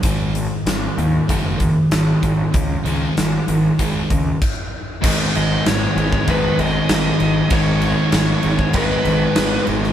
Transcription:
<<
  \new Staff \with { instrumentName = "Lead electric guitar" } { \time 4/4 \key gis \minor \tempo 4 = 96 r1 | r1 | r8 dis''8 cis''4 b'8 dis''4. | cis''2 b'4. r8 | }
  \new Staff \with { instrumentName = "Distorted electric guitar" } { \clef bass \time 4/4 \key gis \minor r1 | r1 | <gis, dis gis b dis'>2 <gis, dis gis b dis'>2 | <gis, dis gis b dis'>2 <gis, dis gis b dis'>2 | }
  \new Staff \with { instrumentName = "Distorted electric guitar" } { \clef bass \time 4/4 \key gis \minor <gis, dis gis>8 <gis, dis>8 <gis, dis>8 <gis, dis>8 <gis, dis gis>8 <gis, dis>8 <gis, dis>8 <gis, dis>8 | <gis, dis>8 <gis, dis gis>8 <gis, dis>8 <gis, dis>8 <gis, dis gis>8 <gis, dis>8 r4 | <gis, dis gis>2 <gis, dis gis>2 | <gis, dis gis>2 <gis, dis gis>2 | }
  \new Staff \with { instrumentName = "Distorted electric guitar" } { \clef bass \time 4/4 \key gis \minor <gis, dis gis>8 <gis, dis>8 <gis, dis>8 <gis, dis>8 <gis, dis gis>8 <gis, dis>8 <gis, dis>8 <gis, dis>8 | <gis, dis>8 <gis, dis gis>8 <gis, dis>8 <gis, dis>8 <gis, dis gis>8 <gis, dis>8 r4 | <gis, dis gis>2 <gis, dis gis>2 | <gis, dis gis>2 <gis, dis gis>2 | }
  \new Staff \with { instrumentName = "Picked electric bass" } { \clef bass \time 4/4 \key gis \minor gis,,4 gis,,8 dis,8 fis,,4 gis,,8 gis,,8 | cis,8 cis,8 gis,,8 gis,,8 gis,,8 cis,8 r4 | gis,,8 gis,,8 gis,,8 gis,,8 gis,,8 gis,,8 gis,,8 gis,,8 | gis,,4 gis,,8 gis,,8 gis,,8 gis,,8 gis,,8 gis,,8 | }
  \new DrumStaff \with { instrumentName = "Drums" } \drummode { \time 4/4 <hh bd>8 hh8 <hh sn>8 hh8 <hh bd>8 <hh bd>8 <hh sn>8 <hh bd>8 | <hh bd>8 hh8 <hh sn>8 hh8 <hh bd>8 <hh bd>8 <cymc bd>4 | <cymc bd>8 <cymc sn>8 <cymc sn>8 cymc16 bd16 <cymc bd>8 cymc8 <cymc sn>8 cymc8 | <cymc bd>8 cymc8 <cymc sn>8 cymc16 bd16 <cymc bd>8 cymc8 <cymc sn>8 cymc16 sn16 | }
>>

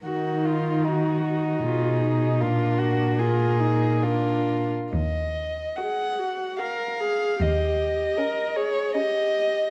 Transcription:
<<
  \new Staff \with { instrumentName = "Violin" } { \time 3/4 \key ees \minor \tempo 4 = 74 bes'4 ges'4 aes'4 | bes'4 bes'4 bes'8. r16 | ees''4 ges''4 f''4 | ees''4. des''8 ees''4 | }
  \new Staff \with { instrumentName = "Viola" } { \time 3/4 \key ees \minor ees'4 ges'4 f'8 ees'8 | d'4 f'8 ees'8 d'8. r16 | r4 aes'8 ges'8 bes'8 aes'8 | g'4 bes'8 aes'8 g'4 | }
  \new Staff \with { instrumentName = "Violin" } { \time 3/4 \key ees \minor ges'8 f'8 ees'8 ees'4. | f'8 ges'8 aes'4 f'8. r16 | r4 ges'4 ges'4 | r4 des'4 des'4 | }
  \new Staff \with { instrumentName = "Cello" } { \clef bass \time 3/4 \key ees \minor ees2 ces4 | bes,2~ bes,8. r16 | ees,4 r2 | ees,4 r2 | }
>>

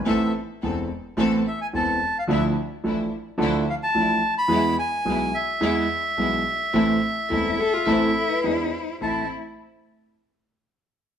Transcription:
<<
  \new Staff \with { instrumentName = "Bandoneon" } { \time 4/4 \key a \minor \tempo 4 = 107 e''8 r2 e''16 gis''16 a''8. f''16 | e''8 r2 f''16 a''4 b''16~ | b''8 gis''4 e''2~ e''8~ | e''2. r4 |
a''8 r2. r8 | }
  \new Staff \with { instrumentName = "Vibraphone" } { \time 4/4 \key a \minor r1 | r1 | r1 | r4 a'8 gis'8 a'8. b'16 c''4 |
c''8 r2. r8 | }
  \new Staff \with { instrumentName = "Cello" } { \time 4/4 \key a \minor r1 | r1 | r1 | r4 e'8 a'16 f'16 e'2 |
e'8 r2. r8 | }
  \new Staff \with { instrumentName = "String section" } { \time 4/4 \key a \minor <b c' a'>8 r8 <b c' a'>8 r8 <b c' a'>8 r8 <b c' a'>8 r8 | <f d' e'>8 r8 <f d' e'>8 r8 <f d' e'>8 r8 <f d' e'>8 r8 | <gis b e'>8 r8 <gis b e'>8 r8 <gis b e'>8 r8 <gis b e'>8 r8 | <a c' e'>8 r8 <a c' e'>8 r8 <a c' e'>8 r8 <gis d' e'>8 r8 |
<a c' e'>8 r2. r8 | }
  \new Staff \with { instrumentName = "Grand piano" } { \clef bass \time 4/4 \key a \minor <a,, a, e b c' a'>8 r8 <e,, e, e b c' a'>8 r8 <a,, a, e b c' a'>8 r8 <e,, e, e b c' a'>8 r8 | <d, d f d' e' a'>8 r8 <a,, a, f d' e' a'>8 r8 <d, d f d' e' a'>8 r8 <a,, a, f d' e' a'>8 r8 | <e, e gis b gis'>8 r8 <b,, b, e gis b gis'>8 r8 <e, e gis b gis'>8 r8 <b,, b, e gis b gis'>8 r8 | <a,, a, e a c' a'>8 r8 <e,, e, e a c' a'>8 r8 <a,, a, e a c' a'>8 r8 <e, e b d' gis'>8 r8 |
<a,, c' e' a'>8 r2. r8 | }
>>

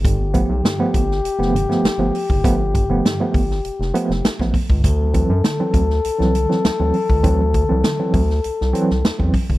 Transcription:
<<
  \new Staff \with { instrumentName = "Trombone" } { \time 4/4 \key g \lydian \tempo 4 = 100 g'1~ | g'2.~ g'8 r8 | a'1~ | a'2.~ a'8 r8 | }
  \new Staff \with { instrumentName = "Tine electric piano" } { \clef bass \time 4/4 \key g \lydian <g, d>16 <a b>16 <f a b>16 r16 <g, d>16 <f a b>16 <a b>16 r8 <f a b>16 <g, d>16 <f a b>16 r16 <f a b>16 r16 <g, d>16 | <f a b>16 r16 <g, d>16 <f a b>16 <g, d>16 <f a b>16 <a b>16 r8. <f a b>16 r8 <f a b>16 r16 <g, d>16 | d16 <fis c'>16 <e fis c'>16 r16 d16 <e fis c'>16 <fis c'>16 r8 <e fis c'>16 r16 <e fis c'>16 r16 <e fis c'>16 r16 d16 | <e fis c'>16 r16 d16 <e fis c'>16 d16 <e fis c'>16 <fis c'>16 r8. <e fis c'>16 r8 <e fis c'>16 r16 d16 | }
  \new Staff \with { instrumentName = "Analog synth bass" } { \clef bass \time 4/4 \key g \lydian g,,8. b,,16 r8 g,,8 f,,16 f,,8 r16 g,,16 g,,16 r16 fis,,16 | g,,8. f,,16 r8 g,,8 f,,16 f,,16 r16 f,,16 a,,16 a,,16 r16 cis,16 | d,8. fis,16 r8 d,8 c,16 c,8 r16 d,16 d,16 r16 cis,16 | d,8. c,16 r8 d,8 c,16 c,16 r16 c,16 e,16 e,16 r16 fis,,16 | }
  \new DrumStaff \with { instrumentName = "Drums" } \drummode { \time 4/4 <hh bd>8 <hh bd>8 <hh sn>8 <hh bd>16 sn16 hh16 sn16 hh16 sn16 <hh sn>8 hho16 bd16 | <hh bd>8 <hh bd>8 <hh sn>8 <hho bd>16 sn16 hh16 sn16 hh16 sn16 <hh sn>16 <bd sn>16 <hho bd>16 bd16 | <hh bd>8 <hh bd>8 <hh sn>8 <hh bd>16 sn16 hh16 sn16 hh16 sn16 <hh sn>8 hho16 bd16 | <hh bd>8 <hh bd>8 <hh sn>8 <hho bd>16 sn16 hh16 sn16 hh16 sn16 <hh sn>16 bd16 <hho bd>16 bd16 | }
>>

